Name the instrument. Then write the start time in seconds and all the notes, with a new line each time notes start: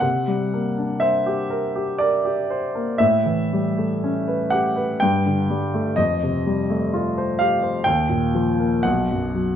grand piano
0.00 C3 F#5
0.28 G3
0.54 A#3
0.78 D4
1.00 C5 E5
1.26 G4
1.50 A#4
1.76 G4
1.98 A#4 D5
2.25 G4
2.50 C5
2.75 A#3
2.98 A2 E5
3.26 E3
3.53 G3
3.78 A3
4.04 C#4
4.28 B4
4.50 G4 F#5
4.76 B4
5.00 G2 G5
5.26 D3
5.50 G3
5.74 A3
5.96 F2 D#5
6.23 C3
6.47 G3
6.70 A3
6.94 F4
7.18 C5
7.39 G4 F5
7.63 C5
7.84 D#2 G5
8.09 A#2
8.35 F3
8.59 A#3
8.83 B1 F#5
9.11 F#2
9.35 F#3